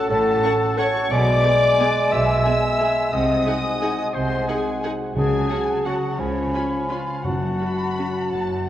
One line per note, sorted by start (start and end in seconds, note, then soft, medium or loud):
0.00 0.25 A3 medium
0.00 0.42 C#4 medium
0.00 0.60 F#4 medium
0.00 0.77 A4 medium
0.09 0.38 A1 medium
0.09 0.38 A2 medium
0.09 1.13 A2 medium
0.09 0.78 C#4 medium
0.09 0.80 A4 medium
0.09 0.77 A4 medium
0.09 0.77 F#5 medium
0.09 0.77 A5 medium
0.09 0.78 A5 medium
0.27 1.13 A3 medium
0.44 1.13 C#4 medium
0.44 0.52 C#4 medium
0.44 0.52 A4 medium
0.44 0.52 F#5 medium
0.44 0.52 C#6 medium
0.61 0.94 F#4 medium
0.78 0.86 C#4 medium
0.78 1.11 C#4 medium
0.78 1.12 A4 medium
0.78 0.86 A4 medium
0.78 1.12 C#5 medium
0.78 1.11 C#5 medium
0.78 0.87 F#5 medium
0.78 1.11 F#5 medium
0.78 1.11 A5 medium
0.78 0.86 C#6 medium
0.78 1.11 C#6 medium
0.95 1.12 F#4 medium
1.11 1.39 B1 medium
1.11 2.11 B2 medium
1.11 1.39 B2 medium
1.11 3.09 G#3 medium
1.11 2.14 D5 loud
1.11 2.10 D5 medium
1.11 3.09 G#5 medium
1.11 2.12 D6 loud
1.27 2.27 G#3 soft
1.44 1.78 B3 soft
1.44 1.53 B3 medium
1.44 1.53 G#4 medium
1.44 1.52 G#5 medium
1.62 1.95 G#4 soft
1.79 2.45 B3 medium
1.79 1.87 B3 medium
1.79 1.87 G#4 medium
1.79 1.87 G#5 medium
1.96 2.62 G#4 medium
2.12 2.40 B1 medium
2.12 2.40 B2 medium
2.12 3.14 B2 medium
2.12 3.13 E5 medium
2.12 3.12 E5 loud
2.12 3.13 E6 medium
2.28 5.18 G#3 soft
2.45 2.53 B3 medium
2.45 2.79 B3 soft
2.45 2.53 G#4 medium
2.45 2.54 G#5 medium
2.63 2.96 G#4 soft
2.80 2.88 B3 medium
2.80 3.14 B3 soft
2.80 2.88 G#4 medium
2.80 2.88 G#5 medium
2.97 3.81 G#4 soft
3.12 3.41 C2 medium
3.12 3.41 C3 medium
3.12 4.14 C3 medium
3.12 5.12 G#3 medium
3.12 4.16 D#5 medium
3.12 3.97 D#5 medium
3.12 5.12 F#5 medium
3.12 4.93 G#5 medium
3.12 4.15 D#6 medium
3.29 4.30 C4 soft
3.46 4.47 D#4 soft
3.46 3.55 D#4 medium
3.46 3.55 G#4 soft
3.46 3.54 F#5 medium
3.46 3.54 G#5 medium
3.64 3.98 F#4 soft
3.82 3.90 D#4 medium
3.82 4.82 G#4 soft
3.82 3.90 G#4 soft
3.82 3.90 F#5 soft
3.82 3.90 G#5 soft
3.99 4.64 F#4 soft
4.14 4.42 C2 medium
4.14 5.18 C3 medium
4.14 4.42 C3 medium
4.14 4.47 C5 medium
4.14 4.48 C6 medium
4.48 5.17 D#4 soft
4.48 4.56 D#4 soft
4.48 4.83 G#4 medium
4.48 4.82 G#4 medium
4.48 4.56 G#4 soft
4.48 4.56 F#5 soft
4.48 4.56 G#5 soft
4.48 4.82 G#5 medium
4.66 4.99 F#4 soft
4.83 4.91 D#4 soft
4.83 5.18 G#4 soft
4.83 4.91 G#4 soft
4.83 4.91 F#5 soft
4.83 4.91 G#5 soft
5.00 5.67 F#4 soft
5.16 5.44 C#2 medium
5.16 6.18 C#3 medium
5.16 5.64 C#3 medium
5.16 5.45 C#3 soft
5.16 6.21 F#3 soft
5.16 5.81 G#4 medium
5.16 5.88 G#4 medium
5.16 6.21 F#5 soft
5.16 5.81 G#5 medium
5.16 6.21 A5 soft
5.33 6.20 A3 soft
5.50 6.52 C#4 soft
5.50 5.59 C#4 soft
5.50 5.59 F#4 soft
5.50 5.58 F#5 soft
5.50 5.58 A5 soft
5.68 6.01 F#4 soft
5.85 5.94 C#4 soft
5.85 6.18 F#4 soft
5.85 5.94 F#4 soft
5.85 6.20 F#4 medium
5.85 6.20 A4 soft
5.85 6.18 F#5 soft
5.85 5.94 F#5 soft
5.85 5.93 A5 soft
6.02 6.20 F#4 soft
6.18 6.48 C#2 medium
6.18 6.68 C#3 medium
6.18 7.26 C#3 medium
6.18 6.48 C#3 soft
6.18 7.08 F3 soft
6.18 6.91 C#4 medium
6.18 6.90 C#4 medium
6.18 6.89 C#5 medium
6.18 7.26 G#5 soft
6.18 7.24 B5 soft
6.36 7.26 G#3 soft
6.53 7.59 C#4 soft
6.53 6.62 C#4 soft
6.53 6.62 F4 soft
6.53 6.62 G#5 soft
6.53 6.62 B5 soft
6.72 7.06 F4 soft
6.89 6.98 C#4 soft
6.89 6.98 F4 soft
6.89 7.24 F4 soft
6.89 7.24 F4 medium
6.89 7.26 B4 soft
6.89 7.23 F5 medium
6.89 6.98 G#5 soft
6.89 6.98 B5 soft
7.08 7.26 F4 soft
7.24 7.54 F#1 soft
7.24 7.75 F#2 medium
7.24 8.31 F#2 soft
7.24 7.54 F#2 soft
7.24 8.69 F#3 soft
7.24 8.69 F#4 medium
7.24 8.69 F#5 soft
7.24 8.69 A5 soft
7.42 8.48 C#3 soft
7.60 8.66 C#4 soft
7.60 7.69 C#4 soft
7.60 7.69 F#4 soft
7.60 8.28 B5 medium
7.79 8.14 F#4 soft
7.98 8.06 C#4 soft
7.98 8.06 F#4 soft
8.16 8.69 F#4 soft
8.32 8.61 F#1 soft
8.32 8.69 F#2 soft
8.32 8.61 F#2 soft
8.32 8.67 A5 soft
8.49 8.69 C#3 soft